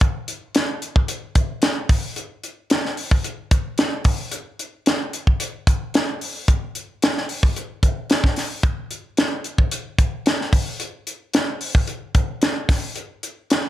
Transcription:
0.01 kick medium
0.01 closed hi-hat medium
0.28 closed hi-hat medium
0.55 snare medium
0.55 closed hi-hat medium
0.82 closed hi-hat soft
0.96 kick medium
1.08 closed hi-hat medium
1.35 kick medium
1.35 closed hi-hat medium
1.62 snare medium
1.62 closed hi-hat medium
1.89 kick medium
1.89 open hi-hat medium
2.16 closed hi-hat medium
2.43 closed hi-hat medium
2.70 snare loud
2.70 closed hi-hat medium
2.85 snare soft
2.97 open hi-hat medium
3.11 kick medium
3.24 closed hi-hat medium
3.51 kick medium
3.51 closed hi-hat medium
3.78 snare loud
3.78 closed hi-hat medium
4.04 kick medium
4.04 open hi-hat medium
4.31 closed hi-hat medium
4.59 closed hi-hat medium
4.86 snare medium
4.86 closed hi-hat medium
5.13 closed hi-hat medium
5.27 kick medium
5.40 closed hi-hat medium
5.67 kick medium
5.67 closed hi-hat medium
5.94 snare loud
5.94 closed hi-hat medium
6.21 open hi-hat medium
6.48 kick medium
6.48 closed hi-hat medium
6.75 closed hi-hat medium
7.02 snare loud
7.02 closed hi-hat medium
7.18 snare soft
7.29 open hi-hat medium
7.43 kick medium
7.56 closed hi-hat medium
7.83 kick medium
7.83 closed hi-hat medium
8.10 snare medium
8.10 closed hi-hat medium
8.24 kick medium
8.24 snare soft
8.36 snare soft
8.36 open hi-hat medium
8.63 kick loud
8.63 closed hi-hat medium
8.91 closed hi-hat medium
9.17 snare loud
9.17 closed hi-hat medium
9.44 closed hi-hat medium
9.58 kick medium
9.71 closed hi-hat medium
9.98 kick medium
9.98 closed hi-hat medium
10.26 snare medium
10.26 closed hi-hat medium
10.41 snare soft
10.53 kick medium
10.53 open hi-hat medium
10.80 closed hi-hat medium
11.07 closed hi-hat medium
11.34 snare medium
11.34 closed hi-hat medium
11.61 open hi-hat medium
11.75 kick medium
11.87 closed hi-hat medium
12.15 kick medium
12.15 closed hi-hat medium
12.42 snare loud
12.42 closed hi-hat medium
12.69 kick medium
12.69 snare soft
12.69 open hi-hat medium
12.96 closed hi-hat medium
13.23 closed hi-hat medium
13.50 snare medium
13.50 closed hi-hat medium

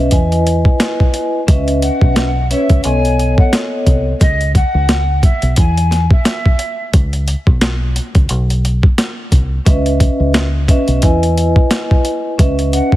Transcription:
0.00 0.12 C#4 medium
0.00 0.10 B4 medium
0.00 0.11 D#5 medium
0.00 0.12 E5 loud
0.11 0.64 E2 loud
0.11 1.38 E4 medium
0.11 1.39 B4 medium
0.11 1.39 D#5 medium
0.11 1.39 G#5 loud
0.11 kick medium
0.11 closed hi-hat loud
0.32 closed hi-hat medium
0.47 closed hi-hat medium
0.65 kick loud
0.80 snare loud
0.80 closed hi-hat medium
1.00 kick medium
1.14 closed hi-hat medium
1.47 1.89 C#2 loud
1.47 2.27 C#4 medium
1.47 2.27 B4 medium
1.47 2.28 D#5 medium
1.47 2.28 E5 loud
1.47 kick loud
1.47 closed hi-hat medium
1.68 closed hi-hat medium
1.82 2.46 F#5 medium
1.82 closed hi-hat medium
2.01 2.53 B1 medium
2.01 kick loud
2.16 snare loud
2.16 closed hi-hat medium
2.50 2.84 C#4 medium
2.50 2.85 B4 medium
2.50 2.83 C#5 medium
2.50 2.81 E5 medium
2.50 2.85 E5 loud
2.50 closed hi-hat medium
2.69 2.81 C#2 medium
2.69 kick medium
2.69 closed hi-hat medium
2.83 3.36 B1 loud
2.83 4.11 B3 medium
2.83 4.11 A4 medium
2.83 4.11 C#5 medium
2.83 4.11 D#5 medium
2.83 3.34 G#5 medium
2.83 closed hi-hat loud
3.05 closed hi-hat medium
3.19 closed hi-hat medium
3.38 3.52 F#5 medium
3.38 kick loud
3.53 snare loud
3.53 closed hi-hat medium
3.86 4.13 C2 medium
3.86 kick medium
3.86 closed hi-hat medium
4.21 4.61 C#2 loud
4.21 4.51 D#5 loud
4.21 kick loud
4.21 closed hi-hat medium
4.41 closed hi-hat medium
4.55 5.19 F#5 loud
4.55 kick medium
4.55 closed hi-hat medium
4.75 5.26 C#2 medium
4.89 snare loud
4.89 closed hi-hat medium
5.23 5.54 E5 medium
5.23 kick medium
5.23 closed hi-hat medium
5.42 5.54 B1 medium
5.42 closed hi-hat medium
5.56 6.09 E2 loud
5.56 6.08 G#5 medium
5.56 kick medium
5.56 closed hi-hat loud
5.77 closed hi-hat medium
5.91 snare soft
5.91 closed hi-hat medium
6.10 6.90 E5 medium
6.10 kick loud
6.25 snare loud
6.25 closed hi-hat medium
6.46 kick medium
6.59 closed hi-hat medium
6.93 7.34 C#2 loud
6.93 kick loud
6.93 closed hi-hat medium
7.13 closed hi-hat medium
7.28 closed hi-hat medium
7.47 7.98 B1 medium
7.47 kick loud
7.61 snare loud
7.61 closed hi-hat medium
7.96 closed hi-hat medium
8.15 8.27 C#2 medium
8.15 kick medium
8.15 closed hi-hat medium
8.29 8.82 B1 loud
8.29 closed hi-hat loud
8.50 closed hi-hat medium
8.65 closed hi-hat medium
8.83 kick loud
8.98 snare loud
8.98 closed hi-hat medium
9.32 9.58 C2 medium
9.32 kick medium
9.32 closed hi-hat medium
9.65 10.07 C#2 loud
9.65 10.45 C#4 medium
9.65 10.46 B4 medium
9.65 10.46 D#5 medium
9.65 10.46 E5 loud
9.65 kick loud
9.65 closed hi-hat medium
9.86 closed hi-hat medium
10.00 kick loud
10.00 closed hi-hat medium
10.20 10.71 C#2 medium
10.34 snare loud
10.34 closed hi-hat medium
10.68 11.03 C#4 loud
10.68 11.01 B4 medium
10.68 11.02 D#5 medium
10.68 11.03 E5 loud
10.68 kick medium
10.68 closed hi-hat medium
10.88 10.99 B1 medium
10.88 closed hi-hat medium
11.02 11.55 E2 loud
11.02 12.29 E4 loud
11.02 12.29 B4 medium
11.02 12.30 D#5 medium
11.02 12.30 G#5 loud
11.02 kick medium
11.02 closed hi-hat loud
11.23 closed hi-hat medium
11.38 closed hi-hat medium
11.56 kick loud
11.71 snare loud
11.71 closed hi-hat medium
11.91 kick medium
12.05 closed hi-hat medium
12.38 12.79 C#2 loud
12.38 12.96 C#4 medium
12.38 12.96 B4 medium
12.38 12.96 D#5 medium
12.38 12.96 E5 loud
12.38 kick loud
12.38 closed hi-hat medium
12.59 closed hi-hat medium
12.73 12.96 F#5 medium
12.73 closed hi-hat medium
12.92 12.96 B1 medium
12.92 kick loud

